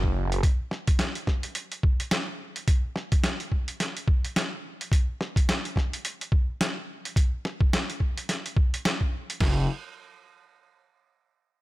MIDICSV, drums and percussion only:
0, 0, Header, 1, 2, 480
1, 0, Start_track
1, 0, Tempo, 560748
1, 372, Time_signature, 4, 2, 24, 8
1, 9944, End_track
2, 0, Start_track
2, 0, Title_t, "Drums"
2, 31, Note_on_c, 9, 36, 63
2, 117, Note_off_c, 9, 36, 0
2, 274, Note_on_c, 9, 42, 50
2, 360, Note_off_c, 9, 42, 0
2, 371, Note_on_c, 9, 36, 119
2, 371, Note_on_c, 9, 42, 62
2, 456, Note_off_c, 9, 36, 0
2, 457, Note_off_c, 9, 42, 0
2, 610, Note_on_c, 9, 40, 38
2, 696, Note_off_c, 9, 40, 0
2, 749, Note_on_c, 9, 42, 49
2, 751, Note_on_c, 9, 36, 108
2, 834, Note_off_c, 9, 42, 0
2, 836, Note_off_c, 9, 36, 0
2, 847, Note_on_c, 9, 38, 115
2, 847, Note_on_c, 9, 42, 61
2, 933, Note_off_c, 9, 38, 0
2, 933, Note_off_c, 9, 42, 0
2, 987, Note_on_c, 9, 42, 35
2, 1073, Note_off_c, 9, 42, 0
2, 1089, Note_on_c, 9, 40, 39
2, 1090, Note_on_c, 9, 36, 60
2, 1175, Note_off_c, 9, 36, 0
2, 1175, Note_off_c, 9, 40, 0
2, 1226, Note_on_c, 9, 42, 50
2, 1312, Note_off_c, 9, 42, 0
2, 1327, Note_on_c, 9, 42, 63
2, 1412, Note_off_c, 9, 42, 0
2, 1469, Note_on_c, 9, 42, 36
2, 1554, Note_off_c, 9, 42, 0
2, 1569, Note_on_c, 9, 36, 113
2, 1655, Note_off_c, 9, 36, 0
2, 1711, Note_on_c, 9, 42, 49
2, 1797, Note_off_c, 9, 42, 0
2, 1809, Note_on_c, 9, 38, 126
2, 1809, Note_on_c, 9, 42, 64
2, 1894, Note_off_c, 9, 38, 0
2, 1894, Note_off_c, 9, 42, 0
2, 2190, Note_on_c, 9, 42, 52
2, 2276, Note_off_c, 9, 42, 0
2, 2291, Note_on_c, 9, 36, 115
2, 2291, Note_on_c, 9, 42, 60
2, 2376, Note_off_c, 9, 36, 0
2, 2376, Note_off_c, 9, 42, 0
2, 2531, Note_on_c, 9, 40, 38
2, 2616, Note_off_c, 9, 40, 0
2, 2669, Note_on_c, 9, 42, 48
2, 2671, Note_on_c, 9, 36, 102
2, 2755, Note_off_c, 9, 42, 0
2, 2757, Note_off_c, 9, 36, 0
2, 2770, Note_on_c, 9, 38, 115
2, 2770, Note_on_c, 9, 42, 61
2, 2855, Note_off_c, 9, 38, 0
2, 2855, Note_off_c, 9, 42, 0
2, 2911, Note_on_c, 9, 42, 35
2, 2996, Note_off_c, 9, 42, 0
2, 3010, Note_on_c, 9, 36, 56
2, 3096, Note_off_c, 9, 36, 0
2, 3149, Note_on_c, 9, 42, 50
2, 3235, Note_off_c, 9, 42, 0
2, 3254, Note_on_c, 9, 38, 60
2, 3254, Note_on_c, 9, 42, 62
2, 3340, Note_off_c, 9, 38, 0
2, 3340, Note_off_c, 9, 42, 0
2, 3395, Note_on_c, 9, 42, 34
2, 3480, Note_off_c, 9, 42, 0
2, 3489, Note_on_c, 9, 36, 105
2, 3575, Note_off_c, 9, 36, 0
2, 3634, Note_on_c, 9, 42, 46
2, 3720, Note_off_c, 9, 42, 0
2, 3734, Note_on_c, 9, 38, 117
2, 3734, Note_on_c, 9, 42, 65
2, 3820, Note_off_c, 9, 38, 0
2, 3820, Note_off_c, 9, 42, 0
2, 4117, Note_on_c, 9, 42, 53
2, 4203, Note_off_c, 9, 42, 0
2, 4208, Note_on_c, 9, 36, 111
2, 4218, Note_on_c, 9, 42, 60
2, 4294, Note_off_c, 9, 36, 0
2, 4304, Note_off_c, 9, 42, 0
2, 4457, Note_on_c, 9, 40, 40
2, 4543, Note_off_c, 9, 40, 0
2, 4589, Note_on_c, 9, 36, 101
2, 4598, Note_on_c, 9, 42, 51
2, 4675, Note_off_c, 9, 36, 0
2, 4684, Note_off_c, 9, 42, 0
2, 4698, Note_on_c, 9, 38, 109
2, 4698, Note_on_c, 9, 42, 63
2, 4784, Note_off_c, 9, 38, 0
2, 4784, Note_off_c, 9, 42, 0
2, 4839, Note_on_c, 9, 42, 36
2, 4924, Note_off_c, 9, 42, 0
2, 4930, Note_on_c, 9, 36, 58
2, 4940, Note_on_c, 9, 40, 41
2, 5015, Note_off_c, 9, 36, 0
2, 5026, Note_off_c, 9, 40, 0
2, 5080, Note_on_c, 9, 42, 51
2, 5166, Note_off_c, 9, 42, 0
2, 5177, Note_on_c, 9, 42, 65
2, 5263, Note_off_c, 9, 42, 0
2, 5318, Note_on_c, 9, 42, 39
2, 5404, Note_off_c, 9, 42, 0
2, 5410, Note_on_c, 9, 36, 100
2, 5495, Note_off_c, 9, 36, 0
2, 5656, Note_on_c, 9, 38, 118
2, 5656, Note_on_c, 9, 42, 69
2, 5742, Note_off_c, 9, 38, 0
2, 5742, Note_off_c, 9, 42, 0
2, 6038, Note_on_c, 9, 42, 53
2, 6123, Note_off_c, 9, 42, 0
2, 6130, Note_on_c, 9, 36, 113
2, 6136, Note_on_c, 9, 42, 65
2, 6216, Note_off_c, 9, 36, 0
2, 6222, Note_off_c, 9, 42, 0
2, 6377, Note_on_c, 9, 40, 42
2, 6463, Note_off_c, 9, 40, 0
2, 6510, Note_on_c, 9, 36, 102
2, 6596, Note_off_c, 9, 36, 0
2, 6620, Note_on_c, 9, 38, 116
2, 6620, Note_on_c, 9, 42, 69
2, 6706, Note_off_c, 9, 38, 0
2, 6706, Note_off_c, 9, 42, 0
2, 6760, Note_on_c, 9, 42, 38
2, 6845, Note_off_c, 9, 42, 0
2, 6850, Note_on_c, 9, 36, 57
2, 6936, Note_off_c, 9, 36, 0
2, 6998, Note_on_c, 9, 42, 55
2, 7083, Note_off_c, 9, 42, 0
2, 7097, Note_on_c, 9, 38, 59
2, 7097, Note_on_c, 9, 42, 66
2, 7182, Note_off_c, 9, 38, 0
2, 7182, Note_off_c, 9, 42, 0
2, 7239, Note_on_c, 9, 42, 37
2, 7325, Note_off_c, 9, 42, 0
2, 7332, Note_on_c, 9, 36, 110
2, 7417, Note_off_c, 9, 36, 0
2, 7480, Note_on_c, 9, 42, 51
2, 7566, Note_off_c, 9, 42, 0
2, 7578, Note_on_c, 9, 38, 122
2, 7578, Note_on_c, 9, 42, 68
2, 7664, Note_off_c, 9, 38, 0
2, 7664, Note_off_c, 9, 42, 0
2, 7711, Note_on_c, 9, 36, 57
2, 7796, Note_off_c, 9, 36, 0
2, 7960, Note_on_c, 9, 42, 55
2, 8045, Note_off_c, 9, 42, 0
2, 8051, Note_on_c, 9, 36, 104
2, 8051, Note_on_c, 9, 38, 104
2, 8051, Note_on_c, 9, 49, 89
2, 8136, Note_off_c, 9, 38, 0
2, 8136, Note_off_c, 9, 49, 0
2, 8137, Note_off_c, 9, 36, 0
2, 9944, End_track
0, 0, End_of_file